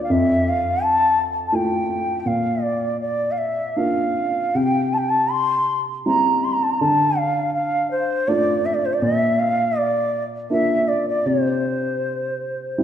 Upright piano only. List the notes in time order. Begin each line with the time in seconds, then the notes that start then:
Already playing: A#3 D4 F4
0.10 F2
1.52 A3 E4 F4
2.26 A#2
3.76 A#3 D4 F4
4.55 C3
6.06 G3 C4 E4
6.81 D3
8.28 A3 D4 F4
9.02 A#2
10.50 A#3 D4 F4
11.26 C3
12.78 G3 C4 E4